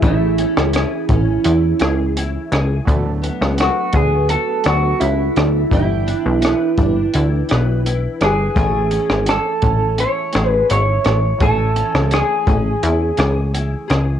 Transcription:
Already playing: nylon-string guitar C#4 E4 G#4
0.00 analog synth bass A1, synth keys E3 A3 C#4, nylon-string guitar A3, kick, closed hi-hat
0.04 clean electric guitar E4, synth keys G#4
0.38 nylon-string guitar C#4, closed hi-hat
0.57 analog synth bass C#2, cross-stick
0.73 nylon-string guitar G#4, cross-stick, closed hi-hat
1.09 analog synth bass A1, nylon-string guitar C#4, kick, closed hi-hat
1.44 analog synth bass E2, nylon-string guitar E4, closed hi-hat
1.79 analog synth bass C#2, nylon-string guitar G#4, cross-stick, closed hi-hat
2.17 nylon-string guitar E4, closed hi-hat
2.52 analog synth bass C#2, nylon-string guitar G#4, cross-stick, closed hi-hat
2.85 analog synth bass D2, synth keys F#3 B3 D4, kick, closed hi-hat
2.90 synth keys A3
3.22 nylon-string guitar B3, closed hi-hat
3.41 analog synth bass C#2, cross-stick
3.58 clean electric guitar F#4, cross-stick, closed hi-hat
3.92 analog synth bass D2, nylon-string guitar B3, clean electric guitar G#4, kick, closed hi-hat
4.29 nylon-string guitar F#4, clean electric guitar A4, closed hi-hat
4.64 analog synth bass D2, synth keys F#3 B3 D4 A4, clean electric guitar F#4, nylon-string guitar A4, cross-stick, closed hi-hat
5.00 analog synth bass C#2, clean electric guitar E4, nylon-string guitar F#4, closed hi-hat
5.36 analog synth bass D2, nylon-string guitar A4, cross-stick, closed hi-hat
5.70 analog synth bass G1, synth keys E3 B3 D4, clean electric guitar E4, kick, closed hi-hat
5.74 synth keys G5
6.06 nylon-string guitar D4, closed hi-hat
6.26 analog synth bass B1
6.41 nylon-string guitar B4, cross-stick, closed hi-hat
6.78 analog synth bass G1, nylon-string guitar D4, kick, closed hi-hat
7.14 analog synth bass D2, nylon-string guitar E4, closed hi-hat
7.49 analog synth bass B1, nylon-string guitar B4, cross-stick, closed hi-hat
7.86 nylon-string guitar E4, closed hi-hat
8.21 analog synth bass G1, clean electric guitar G#4, nylon-string guitar B4, cross-stick, closed hi-hat
8.55 analog synth bass A1, synth keys E3 A3 B3, nylon-string guitar A3, kick, closed hi-hat
8.59 synth keys G#5
8.64 synth keys C#4
8.91 nylon-string guitar C#4, closed hi-hat
9.10 analog synth bass G#1, cross-stick
9.26 clean electric guitar A4, cross-stick, closed hi-hat
9.62 analog synth bass A1, nylon-string guitar C#4, kick, closed hi-hat
9.98 nylon-string guitar E4, clean electric guitar C#5, closed hi-hat
10.33 analog synth bass A1, nylon-string guitar G#4, cross-stick, closed hi-hat
10.49 clean electric guitar B4
10.69 analog synth bass G#1, nylon-string guitar E4, clean electric guitar C#5, closed hi-hat
11.04 analog synth bass A1, cross-stick, closed hi-hat
11.38 analog synth bass A1, synth keys E3 A3 C#4, nylon-string guitar A3, clean electric guitar A4, kick, closed hi-hat
11.44 synth keys G#5
11.76 nylon-string guitar C#4, closed hi-hat
11.94 analog synth bass C#2, cross-stick
12.11 nylon-string guitar G#4, clean electric guitar G#4, cross-stick, closed hi-hat
12.46 analog synth bass A1, nylon-string guitar C#4, kick, closed hi-hat
12.82 analog synth bass E2, nylon-string guitar E4, closed hi-hat
13.17 analog synth bass C#2, nylon-string guitar G#4, cross-stick, closed hi-hat
13.54 nylon-string guitar E4, closed hi-hat
13.88 analog synth bass C#2, nylon-string guitar G#4, cross-stick, closed hi-hat

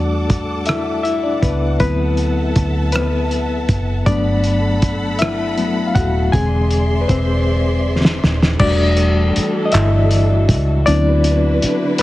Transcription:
Already playing: fingered electric bass E2, reed electric piano G3 A3 D4 F#4 D5, string section A4 F#5 A5 D6
0.30 kick, closed hi-hat
0.66 reed electric piano E4 E5, cross-stick, closed hi-hat
1.03 reed electric piano E4 E5, closed hi-hat
1.23 reed electric piano D4 D5
1.42 fingered electric bass C#2, reed electric piano B3 B4, kick, closed hi-hat
1.80 fingered electric bass D2, reed electric piano F#3 B3 C4 E4 B4, string section A4 E5 A5, kick, closed hi-hat
2.17 closed hi-hat
2.56 fingered electric bass D2, kick, closed hi-hat
2.92 reed electric piano B3 B4, cross-stick, closed hi-hat
3.31 closed hi-hat
3.69 fingered electric bass F#1, kick, closed hi-hat
4.06 fingered electric bass G1, reed electric piano F#3 A3 B3 D4 D5, string section A4 F#5 A5 B5, kick, closed hi-hat
4.44 closed hi-hat
4.82 kick, closed hi-hat
5.19 reed electric piano E4 E5, cross-stick, closed hi-hat
5.58 reed electric piano F#3 A3 B3, closed hi-hat
5.87 reed electric piano F5
5.95 fingered electric bass D#1, reed electric piano F#4 F#5, kick, closed hi-hat
6.32 fingered electric bass E1, reed electric piano D3 G#3 C4 G#4 G#5, string section G#4 D5 E5 C6, kick, closed hi-hat
6.71 closed hi-hat
7.01 reed electric piano B4
7.08 fingered electric bass E1, reed electric piano C4 C5, kick, closed hi-hat
8.05 snare
8.24 fingered electric bass D#1, snare
8.43 snare
8.59 fingered electric bass E1, string section E3 G3 D4 F#4 A4, reed electric piano G3 A3 D4 F#4 D5, kick, crash
8.97 closed hi-hat
9.36 muted fingered electric bass stroke, closed hi-hat
9.65 reed electric piano D#5
9.72 fingered electric bass G1, reed electric piano E4 E5, clap, closed hi-hat
10.11 closed hi-hat
10.49 fingered electric bass C#2, kick, closed hi-hat
10.86 fingered electric bass D2, string section D3 D4 E4 B4, reed electric piano F#3 B3 C4 D4 E4 D5, closed hi-hat
11.24 closed hi-hat
11.62 muted fingered electric bass stroke, closed hi-hat
11.98 reed electric piano B4, closed hi-hat

